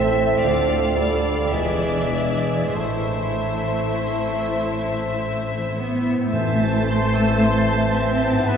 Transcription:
Already playing: A1 A2 A3 C4 E4 A4 E5
0.07 E4 C5
0.39 D2 A4 D5 F5
0.43 D3 F4
0.78 A3
0.96 G3 D5
1.14 F4 D5
1.51 E1 E2 E3 G#3 E4 G#4 B4 E5
1.91 D4
2.12 G#4
2.32 E4 B4
2.74 A1 A2 A3 E4 C5 E5
3.18 E3
3.60 C4
4.00 E4
4.40 A4
4.80 E4
5.18 C4
5.57 E3
5.76 B3
5.96 C4
6.15 A2
6.20 C4
6.24 E4
6.28 A4
6.33 A1 A2 E3 A3 C4 E4 C5 E5 A5
6.62 A5
6.88 C6
7.14 E6
7.42 C6
7.66 A5
7.93 C4 E5
8.20 A5
8.30 G#2
8.35 B3
8.39 E4
8.47 G#1 B3 E4 B4 E5

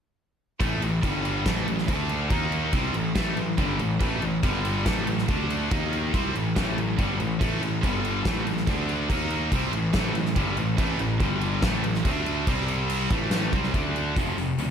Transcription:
0.60 A1 A2 E3 A3, kick, crash
0.82 A1 A2 E3, crash
1.02 G1 G2 D3 G3, kick, crash
1.25 crash
1.44 A1 A2 E3 A3, kick, snare, crash
1.67 A1 A2 E3, crash
1.78 snare
1.88 D2 D3 A3 D4, kick, crash
2.09 crash
2.30 D#2 D#3 A#3 D#4, kick, crash
2.52 crash
2.73 C2 C3 G3 C4, kick, crash
2.94 A1 A2 E3, crash
3.15 A1 A2 E3 A3, kick, snare, crash
3.36 A1 A2 E3, crash
3.58 G1 G2 D3 G3, kick, crash
3.79 A1 A2 E3, crash
4.00 A1 A2 E3 A3, kick, crash
4.22 A1 A2 E3, crash
4.43 G1 G2 D3 G3, kick, crash
4.65 crash
4.85 A1 A2 E3 A3, kick, snare, crash
5.07 A1 A2 E3, crash
5.18 snare
5.28 D2 D3 A3 D4, kick, crash
5.50 crash
5.70 D#2 D#3 A#3 D#4, kick, crash
5.93 crash
6.13 C2 C3 G3 C4, kick, crash
6.35 A1 A2 E3, crash
6.56 A1 A2 E3 A3, kick, snare, crash
6.77 A1 A2 E3, crash
6.98 G1 G2 D3 G3, kick, crash
7.19 A1 A2 E3, crash
7.41 A1 A2 E3 A3, kick, crash
7.61 A1 A2 E3, crash
7.83 G1 G2 D3 G3, kick, crash
8.05 crash
8.25 A1 A2 E3 A3, kick, snare, crash
8.45 A1 A2 E3, crash
8.57 snare
8.67 D2 D3 A3 D4, kick, crash
8.89 crash
9.10 D#2 D#3 A#3 D#4, kick, crash
9.30 crash
9.52 C2 C3 G3 C4, kick, crash
9.72 A1 A2 E3, crash
9.94 A1 A2 E3 A3, kick, snare, crash
10.14 A1 A2 E3, crash
10.26 snare
10.36 G1 G2 D3 G3, kick, crash
10.57 A1 A2 E3, crash
10.78 A1 A2 E3 A3, kick, crash
10.99 A1 A2 E3, crash
11.20 G1 G2 D3 G3, kick, crash
11.41 crash
11.62 A1 A2 E3 A3, kick, snare, crash
11.84 A1 A2 E3, crash
11.94 snare
12.05 D2 D3 A3 D4, kick, crash
12.26 crash
12.47 C2 C3 G3 C4, kick, crash
12.68 crash
12.90 crash
13.11 A1 A2 E3 A3, kick, crash
13.31 snare, crash
13.52 C2 C3 G3 C4, kick, crash
13.64 snare
13.74 D2 D3 A3 D4, kick, crash
13.96 crash
14.16 F1 F2 C3 F3, kick, open hi-hat
14.37 F1 F2 C3, open hi-hat
14.58 D2 F2 C3, open hi-hat

